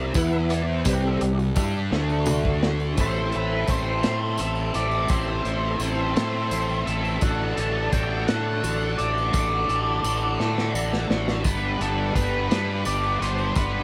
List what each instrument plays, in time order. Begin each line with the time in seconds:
Already playing: fingered electric bass C2, overdriven electric guitar C3 G3 C4
0.14 fingered electric bass E2, overdriven electric guitar E3 B3 E4, tonewheel organ E3 B3 E4 F#5, kick, closed hi-hat, tambourine
0.27 tonewheel organ F#5
0.32 tonewheel organ E5, tambourine
0.49 tonewheel organ D5, closed hi-hat, tambourine
0.69 tonewheel organ C5
0.85 fingered electric bass C2, tonewheel organ C3 G3 C4 B4, overdriven electric guitar C3 G3 C4, kick, closed hi-hat, tambourine
1.05 tonewheel organ A4
1.20 fingered electric bass C2, overdriven electric guitar C3 G3, tonewheel organ G4, closed hi-hat, tambourine
1.38 tonewheel organ F#4, tambourine
1.55 fingered electric bass G2, overdriven electric guitar G3 D4 G4, tonewheel organ E4, kick, closed hi-hat, tambourine
1.74 tonewheel organ D4
1.90 fingered electric bass D2, overdriven electric guitar D3 A3 D4, tonewheel organ D3 A3 D4, snare
2.10 tonewheel organ F#4, tambourine
2.26 mid tom, tambourine
2.45 kick
2.63 snare
2.80 tambourine
2.96 fingered electric bass A1, overdriven electric guitar A2 A3 C4 E4 A4, tonewheel organ C4 A4 E5 A5, kick, closed hi-hat, tambourine
3.01 lead electric guitar C5
3.32 fingered electric bass A1, overdriven electric guitar C4 E4 A4, closed hi-hat
3.36 lead electric guitar B4
3.67 fingered electric bass A1, overdriven electric guitar A3 C4 E4 A4, lead electric guitar C5, kick, closed hi-hat, tambourine
4.02 fingered electric bass A2, overdriven electric guitar C4 E4 A4, snare, closed hi-hat
4.38 fingered electric bass A1, overdriven electric guitar A3 C4 E4 A4, lead electric guitar E5, closed hi-hat, tambourine
4.55 tambourine
4.73 fingered electric bass A1, overdriven electric guitar C4 E4 A4, lead electric guitar D5, closed hi-hat
4.91 tambourine
5.08 fingered electric bass A1, overdriven electric guitar A2 A3 C4 E4 A4, lead electric guitar C5, kick, closed hi-hat, tambourine
5.44 fingered electric bass A1, overdriven electric guitar C4 E4 A4, closed hi-hat
5.79 fingered electric bass A1, overdriven electric guitar A3 C4 E4 A4, lead electric guitar C5, closed hi-hat, tambourine
6.14 fingered electric bass A2, overdriven electric guitar C4 E4 A4, lead electric guitar C5, snare, closed hi-hat
6.49 fingered electric bass A1, overdriven electric guitar A3 C4 E4 A4, closed hi-hat, tambourine
6.69 tambourine
6.85 fingered electric bass A1, overdriven electric guitar C4 E4 A4, lead electric guitar E5, closed hi-hat
7.05 tambourine
7.20 fingered electric bass A1, overdriven electric guitar A2 D3 D4 F#4 A4, tonewheel organ D5 A5, lead electric guitar F#5, kick, closed hi-hat, tambourine
7.56 fingered electric bass A1, overdriven electric guitar D4 F#4 A4, lead electric guitar A5, closed hi-hat
7.92 fingered electric bass A1, overdriven electric guitar D3 D4 F#4 A4, lead electric guitar G5, kick, closed hi-hat, tambourine
8.27 fingered electric bass A2, overdriven electric guitar D4 F#4 A4, lead electric guitar F#5, snare, closed hi-hat
8.62 fingered electric bass A1, overdriven electric guitar D3 D4 F#4 A4, closed hi-hat, tambourine
8.82 tambourine
8.98 fingered electric bass A1, overdriven electric guitar D4 F#4 A4, lead electric guitar D5, closed hi-hat
9.18 tambourine
9.33 fingered electric bass A1, overdriven electric guitar A2 D3 D4 F#4 A4, lead electric guitar D5, tonewheel organ B5, kick, closed hi-hat, tambourine
9.68 fingered electric bass A1, overdriven electric guitar D4 F#4 A4, closed hi-hat
10.04 fingered electric bass A1, overdriven electric guitar D3 D4 F#4 A4, closed hi-hat, tambourine
10.39 fingered electric bass A2, overdriven electric guitar D4 F#4 A4, snare
10.58 snare
10.73 fingered electric bass A1, overdriven electric guitar D3 D4 F#4 A4, tambourine
10.93 snare, tambourine
11.08 fingered electric bass A1, overdriven electric guitar D4 F#4 A4, snare
11.28 snare, tambourine
11.43 fingered electric bass G1, overdriven electric guitar G3 B3 D4 B4, kick, closed hi-hat, tambourine
11.47 tonewheel organ G4 G5 B5, lead electric guitar B4
11.78 fingered electric bass G1, overdriven electric guitar B3 D4 B4, closed hi-hat
11.82 lead electric guitar A4
12.13 fingered electric bass G1, overdriven electric guitar G3 B3 D4 B4, lead electric guitar B4, kick, closed hi-hat, tambourine
12.48 fingered electric bass G2, overdriven electric guitar B3 D4 B4, snare, closed hi-hat
12.84 fingered electric bass G1, overdriven electric guitar G3 B3 D4 B4, lead electric guitar D5, closed hi-hat, tambourine
13.03 tambourine
13.19 fingered electric bass G1, overdriven electric guitar B3 D4 B4, lead electric guitar C5, closed hi-hat
13.38 tambourine
13.54 fingered electric bass G1, overdriven electric guitar G3 B3 D4 B4, lead electric guitar B4, tonewheel organ F#5, kick, closed hi-hat, tambourine